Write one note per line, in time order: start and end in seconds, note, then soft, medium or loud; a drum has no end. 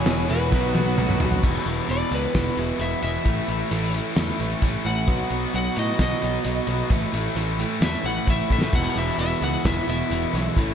0.00 0.51 E2 medium
0.00 0.51 B2 medium
0.00 0.52 E3 medium
0.00 0.52 G#3 medium
0.00 0.51 B3 medium
0.00 0.51 E4 medium
0.00 0.26 G#4 medium
0.00 0.51 B4 medium
0.00 0.30 C#5 medium
0.05 0.28 E1 medium
0.05 0.28 E2 medium
0.05 0.28 B2 medium
0.05 0.29 E3 loud
0.05 0.29 G#3 loud
0.05 0.30 B3 loud
0.05 0.30 E4 loud
0.05 snare loud
0.05 closed hi-hat medium
0.05 tambourine loud
0.29 0.50 E1 medium
0.29 0.51 E2 medium
0.29 0.50 B2 medium
0.29 0.51 E3 medium
0.29 0.51 G#3 medium
0.29 0.51 B3 medium
0.29 0.52 E4 loud
0.29 1.17 F#4 medium
0.29 1.17 B4 medium
0.29 closed hi-hat medium
0.51 0.73 B1 medium
0.51 0.72 B2 loud
0.51 0.73 F#3 loud
0.51 1.43 F#3 medium
0.51 0.73 B3 medium
0.51 1.43 B3 medium
0.51 1.43 D#4 medium
0.51 0.74 D#4 loud
0.51 0.74 F#4 loud
0.51 1.43 B4 medium
0.51 kick medium
0.51 snare medium
0.73 0.96 B1 medium
0.73 0.95 B2 medium
0.73 0.96 F#3 medium
0.73 0.97 B3 medium
0.73 0.97 D#4 medium
0.73 0.98 F#4 medium
0.73 high tom medium
0.96 1.19 B1 medium
0.96 1.18 B2 medium
0.96 1.18 F#3 loud
0.96 1.19 B3 loud
0.96 1.19 D#4 loud
0.96 1.20 F#4 loud
0.96 mid tom medium
1.09 mid tom medium
1.19 1.41 B1 medium
1.19 1.41 B2 medium
1.19 1.42 F#3 medium
1.19 1.42 B3 medium
1.19 1.42 D#4 medium
1.19 1.42 F#4 loud
1.19 floor tom loud
1.32 floor tom loud
1.42 1.57 E1 medium
1.42 1.64 E2 medium
1.42 1.64 B2 medium
1.42 1.66 E3 medium
1.42 1.66 G#3 loud
1.42 1.66 B3 medium
1.42 1.68 E4 loud
1.42 kick loud
1.42 crash loud
1.65 1.80 E1 medium
1.65 1.86 E2 medium
1.65 1.87 B2 medium
1.65 1.89 E3 medium
1.65 1.88 G#3 medium
1.65 1.88 B3 medium
1.65 1.90 E4 medium
1.65 closed hi-hat medium
1.87 2.03 E1 medium
1.87 2.10 E2 medium
1.87 2.10 B2 medium
1.87 2.12 E3 medium
1.87 2.11 G#3 medium
1.87 2.12 B3 medium
1.87 2.13 E4 medium
1.87 2.12 D5 medium
1.87 closed hi-hat medium
2.11 2.25 C#2 medium
2.11 2.32 E2 medium
2.11 2.32 B2 medium
2.11 2.33 E3 medium
2.11 2.34 G#3 medium
2.11 2.34 B3 medium
2.11 2.35 E4 medium
2.11 2.80 B4 medium
2.11 closed hi-hat medium
2.33 2.49 E1 medium
2.33 2.55 E2 medium
2.33 2.56 B2 medium
2.33 2.57 E3 medium
2.33 2.57 G#3 medium
2.33 2.57 B3 medium
2.33 2.58 E4 medium
2.33 kick medium
2.33 snare loud
2.33 closed hi-hat medium
2.33 tambourine loud
2.56 2.71 E1 medium
2.56 2.78 E2 medium
2.56 2.79 B2 medium
2.56 2.79 E3 medium
2.56 2.80 G#3 medium
2.56 2.80 B3 medium
2.56 2.81 E4 medium
2.56 closed hi-hat medium
2.79 2.93 E1 medium
2.79 3.01 E2 medium
2.79 3.01 B2 medium
2.79 3.02 E3 loud
2.79 3.03 G#3 medium
2.79 3.03 B3 medium
2.79 3.04 E4 medium
2.79 3.02 E5 medium
2.79 closed hi-hat medium
3.02 3.17 E1 medium
3.02 3.24 E2 medium
3.02 3.24 B2 medium
3.02 3.24 E3 medium
3.02 3.25 G#3 medium
3.02 3.25 B3 medium
3.02 3.25 E4 medium
3.02 3.92 E5 medium
3.02 closed hi-hat medium
3.24 3.39 A1 medium
3.24 3.47 A2 medium
3.24 3.47 E3 medium
3.24 3.48 A3 medium
3.24 3.48 C#4 medium
3.24 3.49 E4 loud
3.24 kick medium
3.24 closed hi-hat medium
3.48 3.62 A1 medium
3.48 3.69 A2 medium
3.48 3.69 E3 medium
3.48 3.70 A3 medium
3.48 3.71 C#4 medium
3.48 3.71 E4 medium
3.48 closed hi-hat medium
3.70 3.99 A1 medium
3.70 3.92 A2 medium
3.70 3.92 E3 medium
3.70 3.93 A3 medium
3.70 3.93 C#4 medium
3.70 3.94 E4 medium
3.70 closed hi-hat medium
3.93 4.15 A2 medium
3.93 4.16 E3 medium
3.93 4.16 A3 medium
3.93 4.17 C#4 medium
3.93 4.17 E4 medium
3.93 closed hi-hat medium
4.16 4.31 E2 medium
4.16 4.37 A2 medium
4.16 4.38 E3 medium
4.16 4.39 A3 medium
4.16 4.39 C#4 medium
4.16 4.40 E4 medium
4.16 snare loud
4.16 closed hi-hat medium
4.16 tambourine loud
4.38 4.53 A1 medium
4.38 4.61 A2 medium
4.38 4.61 E3 medium
4.38 4.62 A3 medium
4.38 4.63 C#4 medium
4.38 4.63 E4 medium
4.38 closed hi-hat medium
4.62 4.76 A1 medium
4.62 4.83 A2 medium
4.62 4.83 E3 medium
4.62 4.84 A3 medium
4.62 4.85 C#4 loud
4.62 4.85 E4 medium
4.62 kick medium
4.62 closed hi-hat medium
4.84 5.08 A1 medium
4.84 5.06 A2 medium
4.84 5.07 E3 medium
4.84 5.07 A3 medium
4.84 5.07 C#4 medium
4.84 5.07 E4 medium
4.84 5.52 F#5 medium
4.84 closed hi-hat medium
5.07 5.22 B1 loud
5.07 5.29 B2 medium
5.07 5.29 F#3 loud
5.07 5.30 B3 medium
5.07 5.31 D#4 loud
5.07 5.31 F#4 medium
5.07 kick loud
5.07 closed hi-hat medium
5.30 5.45 B1 medium
5.30 5.52 B2 medium
5.30 5.53 F#3 medium
5.30 5.54 B3 medium
5.30 5.54 D#4 medium
5.30 5.54 F#4 medium
5.30 closed hi-hat medium
5.53 5.68 B1 medium
5.53 5.75 B2 medium
5.53 5.75 F#3 medium
5.53 5.76 B3 medium
5.53 5.76 D#4 medium
5.53 5.77 F#4 medium
5.53 5.77 F#5 medium
5.53 closed hi-hat medium
5.76 5.91 A2 medium
5.76 5.97 B2 medium
5.76 5.98 F#3 medium
5.76 5.98 B3 medium
5.76 5.99 D#4 loud
5.76 6.00 F#4 medium
5.76 6.00 D#5 medium
5.76 closed hi-hat medium
5.98 6.13 B1 medium
5.98 6.20 B2 medium
5.98 6.21 F#3 medium
5.98 6.21 B3 medium
5.98 6.22 D#4 medium
5.98 6.22 F#4 medium
5.98 7.33 D#5 medium
5.98 kick medium
5.98 snare loud
5.98 closed hi-hat medium
5.98 tambourine loud
6.21 6.37 B1 medium
6.21 6.43 B2 medium
6.21 6.44 F#3 medium
6.21 6.44 B3 medium
6.21 6.45 D#4 medium
6.21 6.45 F#4 medium
6.21 closed hi-hat medium
6.44 6.59 B1 medium
6.44 6.66 B2 medium
6.44 6.66 F#3 loud
6.44 6.67 B3 loud
6.44 6.67 D#4 loud
6.44 6.68 F#4 loud
6.44 closed hi-hat medium
6.67 6.81 B1 medium
6.67 6.89 B2 medium
6.67 6.89 F#3 medium
6.67 6.90 B3 medium
6.67 6.90 D#4 medium
6.67 6.90 F#4 loud
6.67 closed hi-hat medium
6.89 7.04 A1 medium
6.89 7.11 A2 medium
6.89 7.13 E3 medium
6.89 7.13 A3 medium
6.89 7.13 C#4 medium
6.89 7.14 E4 loud
6.89 kick medium
6.89 closed hi-hat medium
7.13 7.27 A1 medium
7.13 7.33 A2 medium
7.13 7.35 E3 medium
7.13 7.35 A3 medium
7.13 7.35 C#4 medium
7.13 7.36 E4 medium
7.13 closed hi-hat medium
7.35 7.64 A1 medium
7.35 7.57 A2 medium
7.35 7.58 E3 medium
7.35 7.58 A3 medium
7.35 7.58 C#4 medium
7.35 7.60 E4 medium
7.35 closed hi-hat medium
7.58 7.80 A2 medium
7.58 7.81 E3 medium
7.58 7.81 A3 medium
7.58 7.82 C#4 medium
7.58 7.83 E4 loud
7.58 closed hi-hat medium
7.81 7.95 E2 medium
7.81 8.03 A2 medium
7.81 8.04 E3 medium
7.81 8.04 A3 medium
7.81 8.05 C#4 medium
7.81 8.06 E4 medium
7.81 8.05 E5 loud
7.81 snare loud
7.81 closed hi-hat medium
7.81 tambourine loud
8.04 8.19 A1 medium
8.04 8.27 A2 medium
8.04 8.28 E3 medium
8.04 8.28 A3 medium
8.04 8.29 C#4 medium
8.04 8.30 E4 medium
8.04 8.28 F#5 medium
8.04 closed hi-hat medium
8.27 8.41 A1 medium
8.27 8.48 A2 medium
8.27 8.50 E3 medium
8.27 8.50 A3 medium
8.27 8.51 C#4 loud
8.27 8.52 E4 loud
8.27 8.51 E5 medium
8.27 kick medium
8.27 closed hi-hat medium
8.42 8.63 A3 medium
8.42 8.65 B3 medium
8.48 8.64 A1 medium
8.48 8.72 A2 medium
8.48 8.74 E3 medium
8.48 8.72 A3 medium
8.48 8.66 C4 medium
8.48 8.73 C#4 medium
8.48 8.68 D4 medium
8.48 8.76 E4 medium
8.48 kick medium
8.52 8.69 E4 medium
8.52 8.70 F4 medium
8.52 8.74 E5 medium
8.59 8.72 G4 medium
8.59 8.73 A4 medium
8.59 snare medium
8.65 8.71 B4 medium
8.65 8.76 C5 medium
8.70 8.87 E1 medium
8.70 8.94 E2 medium
8.70 8.95 B2 medium
8.70 10.55 G#3 medium
8.70 10.55 B3 medium
8.70 10.54 E4 medium
8.70 10.54 B4 medium
8.70 8.77 D5 medium
8.70 kick loud
8.70 closed hi-hat loud
8.70 crash medium
8.74 8.97 E3 medium
8.74 8.96 G#3 loud
8.74 8.97 B3 loud
8.74 8.98 E4 loud
8.74 8.97 F#5 medium
8.96 9.10 E1 medium
8.96 9.17 E2 medium
8.96 9.18 B2 medium
8.96 9.20 E3 medium
8.96 9.19 G#3 medium
8.96 9.20 B3 medium
8.96 9.21 E4 loud
8.96 9.20 E5 medium
8.96 closed hi-hat medium
9.18 9.33 E1 medium
9.18 9.41 E2 medium
9.18 9.41 B2 medium
9.18 9.42 E3 medium
9.18 9.42 G#3 medium
9.18 9.43 B3 medium
9.18 9.44 E4 medium
9.18 9.42 E5 medium
9.18 closed hi-hat medium
9.41 9.56 C#2 medium
9.41 9.64 E2 medium
9.41 9.65 B2 loud
9.41 9.65 E3 loud
9.41 9.65 G#3 medium
9.41 9.66 B3 loud
9.41 9.66 E4 loud
9.41 9.65 F#5 medium
9.41 closed hi-hat medium
9.65 9.79 E1 medium
9.65 9.86 E2 medium
9.65 9.87 B2 medium
9.65 9.87 E3 medium
9.65 9.88 G#3 medium
9.65 9.88 B3 medium
9.65 9.89 E4 medium
9.65 9.88 E5 medium
9.65 kick medium
9.65 snare loud
9.65 closed hi-hat medium
9.65 tambourine loud
9.87 10.02 E1 medium
9.87 10.09 E2 medium
9.87 10.10 B2 medium
9.87 10.11 E3 medium
9.87 10.11 G#3 medium
9.87 10.12 B3 medium
9.87 10.12 E4 medium
9.87 10.74 E5 loud
9.87 closed hi-hat medium
10.11 10.25 E1 loud
10.11 10.33 E2 loud
10.11 10.34 B2 medium
10.11 10.34 E3 medium
10.11 10.35 G#3 medium
10.11 10.35 B3 loud
10.11 10.36 E4 medium
10.11 closed hi-hat medium
10.33 10.47 B1 medium
10.33 10.55 E2 medium
10.33 10.56 B2 medium
10.33 10.56 E3 medium
10.33 10.56 G#3 loud
10.33 10.57 B3 medium
10.33 10.57 E4 medium
10.33 snare soft
10.33 closed hi-hat medium
10.56 10.71 A1 medium
10.56 10.74 A2 medium
10.56 10.74 E3 loud
10.56 10.74 A3 medium
10.56 10.74 C#4 medium
10.56 10.74 E4 medium
10.56 10.74 E4 loud
10.56 10.74 C#5 medium
10.56 kick medium
10.56 closed hi-hat loud